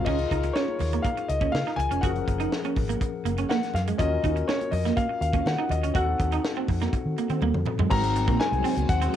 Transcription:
0.05 fingered electric bass C#2, clean electric guitar C#4, tine electric piano D#4 E4 G#4 A#4, grand piano D#5, kick, crash, muted conga, low conga
0.11 tine electric piano F4
0.18 closed hi-hat
0.31 fingered electric bass C#2, clean electric guitar D#4, kick, closed hi-hat
0.43 muted clean electric guitar stroke, closed hi-hat
0.53 clean electric guitar C#4, grand piano C#5, snare
0.68 high conga
0.79 fingered electric bass D#2, muted clean electric guitar stroke, open hi-hat, muted conga, low conga
0.93 clean electric guitar A#3, closed hi-hat, high conga
1.02 clean electric guitar A#3, grand piano F5, kick, closed hi-hat, muted conga
1.17 muted clean electric guitar stroke, closed hi-hat
1.29 fingered electric bass C#2, grand piano D#5, closed hi-hat
1.41 clean electric guitar C#4, kick, closed hi-hat, high conga
1.52 fingered electric bass C#3, grand piano F5, snare, muted conga, high conga
1.67 clean electric guitar D#4, snare
1.76 fingered electric bass C#2, grand piano G#5, muted clean electric guitar stroke, closed hi-hat, low conga
1.91 fingered electric bass F1, clean electric guitar C#4, closed hi-hat
2.01 fingered electric bass F#1, tine electric piano F3 C#4 G#4 A#4, clean electric guitar F#4, grand piano F#5, kick, closed hi-hat, muted conga, low conga
2.15 closed hi-hat
2.27 fingered electric bass F#1, muted clean electric guitar stroke, kick, closed hi-hat
2.40 clean electric guitar D#4, closed hi-hat
2.52 snare
2.64 clean electric guitar C#4, closed hi-hat, high conga
2.76 fingered electric bass G#1, muted clean electric guitar stroke, kick, open hi-hat, muted conga, low conga
2.89 clean electric guitar A#3, closed hi-hat, high conga
3.01 muted clean electric guitar stroke, kick, closed hi-hat
3.25 fingered electric bass F#1, clean electric guitar A#3, closed hi-hat, muted conga
3.38 clean electric guitar C#4, closed hi-hat, high conga
3.49 clean electric guitar A#3, grand piano F#5, snare, muted conga, high conga
3.63 snare, closed hi-hat
3.74 fingered electric bass F#2, grand piano F5, muted clean electric guitar stroke, snare, closed hi-hat, muted conga, low conga
3.87 clean electric guitar G#3, closed hi-hat
3.97 fingered electric bass D#2, tine electric piano C#4 F4 F#4 A#4, clean electric guitar C#4, grand piano D#5, kick, closed hi-hat, muted conga, low conga
4.23 fingered electric bass D#2, clean electric guitar D#4, kick, closed hi-hat
4.36 muted clean electric guitar stroke, closed hi-hat
4.48 clean electric guitar C#4, grand piano C#5, snare, muted conga
4.61 closed hi-hat, high conga
4.71 fingered electric bass F2, grand piano D#5, muted clean electric guitar stroke, open hi-hat, muted conga, low conga
4.85 clean electric guitar A#3, snare, closed hi-hat, high conga
4.97 clean electric guitar A#3, grand piano F5, kick, closed hi-hat
5.09 muted clean electric guitar stroke
5.21 fingered electric bass D#2, grand piano F5, closed hi-hat, muted conga
5.33 clean electric guitar C#4, kick, closed hi-hat, high conga
5.45 fingered electric bass D#3, grand piano F#5, snare, muted conga, high conga
5.58 clean electric guitar D#4
5.69 fingered electric bass D#2, grand piano D#5, muted clean electric guitar stroke, closed hi-hat, low conga
5.82 fingered electric bass D2, clean electric guitar C#4, closed hi-hat
5.93 fingered electric bass D#2, tine electric piano C4 D#4 F#4 A4, clean electric guitar F#4, grand piano F#5, kick, closed hi-hat, low conga
6.20 fingered electric bass D#2, muted clean electric guitar stroke, kick, closed hi-hat, muted conga
6.32 clean electric guitar D#4, closed hi-hat
6.44 snare, muted conga
6.57 clean electric guitar C4, high conga
6.68 fingered electric bass F2, muted clean electric guitar stroke, kick, open hi-hat, muted conga, low conga
6.81 clean electric guitar A#3, snare, closed hi-hat, high conga
6.93 muted clean electric guitar stroke, kick, closed hi-hat
7.05 fingered electric bass D#3
7.18 clean electric guitar A#3, closed hi-hat, muted conga
7.29 fingered electric bass D#3, clean electric guitar C4, closed hi-hat, high conga
7.41 fingered electric bass D#2, clean electric guitar A#3, high tom, high conga
7.54 fingered electric bass F2, mid tom
7.65 muted clean electric guitar stroke, mid tom, low conga
7.79 fingered electric bass F#2, clean electric guitar G#3, floor tom
7.89 fingered electric bass G#1, string machine F#3 G#3 C4, clean electric guitar G#3, tine electric piano C4 D#4 F#4 A#4, grand piano A#5, kick, crash, muted conga, low conga
8.03 closed hi-hat
8.16 muted clean electric guitar stroke, closed hi-hat
8.27 fingered electric bass A#1, clean electric guitar A#3, kick, closed hi-hat
8.40 grand piano G#5, snare, muted conga
8.52 fingered electric bass C2, closed hi-hat, high conga
8.64 clean electric guitar C4, open hi-hat, muted conga
8.77 fingered electric bass C#2, closed hi-hat, high conga
8.89 fingered electric bass D#2, grand piano F#5, kick, closed hi-hat, muted conga
9.02 clean electric guitar C4, closed hi-hat

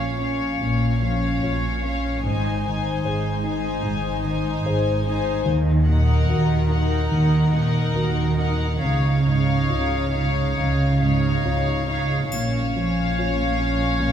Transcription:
Already playing: double bass section A#1, cello section A#2, grand piano A#2 F3 F4 C#5, viola section C#4, violin section C#5 F5
0.19 viola section C#4, grand piano C#4, violin section C#5 F5
0.60 double bass section A#1, grand piano A#2, cello section A#2
1.02 grand piano F3, viola section C#4, violin section C#5 F5
1.42 double bass section A#1, cello section A#2, grand piano F4 C#5
1.82 viola section C#4, grand piano C#4, violin section C#5 F5
2.23 double bass section G#1, grand piano G#2, cello section G#2, viola section D#4, violin section C5 G#5
2.63 grand piano D#3, viola section D#4, violin section C5 G#5
3.04 double bass section G#1, cello section G#2, grand piano G#4 C5
3.44 grand piano D#4, viola section D#4, violin section C5 G#5
3.83 double bass section G#1, grand piano G#2, cello section G#2
4.24 grand piano D#3, viola section D#4, violin section C5 G#5
4.66 double bass section G#1, cello section G#2, grand piano G#4 C5
5.06 viola section D#4, grand piano D#4, violin section C5 G#5
5.46 grand piano D#2, double bass section D#2, cello section D#3
5.87 grand piano A#2, viola section D#4, violin section A#4 F#5
6.29 double bass section D#2, cello section D#3, grand piano F#4 A#4
6.69 viola section D#4, grand piano D#4, violin section A#4 F#5
7.11 grand piano D#2, double bass section D#2, cello section D#3
7.52 grand piano A#2, viola section D#4, violin section A#4 F#5
7.94 double bass section D#2, cello section D#3, grand piano F#4 A#4
8.38 grand piano D#4, viola section D#4, violin section A#4 F#5
8.81 double bass section C#2, grand piano C#2, cello section C#3, viola section D#4, violin section C#5 F5
9.25 grand piano G#2, viola section D#4, violin section C#5 F5
9.70 double bass section C#2, cello section C#3, grand piano F4 C#5
10.12 viola section D#4, grand piano D#4, violin section C#5 F5
10.57 double bass section C#2, grand piano C#2, cello section C#3
11.00 grand piano G#2, viola section D#4, violin section C#5 F5
11.43 double bass section C#2, cello section C#3, grand piano F4 C#5
11.88 viola section D#4, grand piano D#4, violin section C#5 F5
12.31 double bass section A#1, cello section A#2, grand piano A#2, viola section C#4, violin section C#5 F5, triangle
12.76 grand piano F3
13.19 grand piano F4 C#5
13.59 grand piano C#4
14.00 grand piano A#2

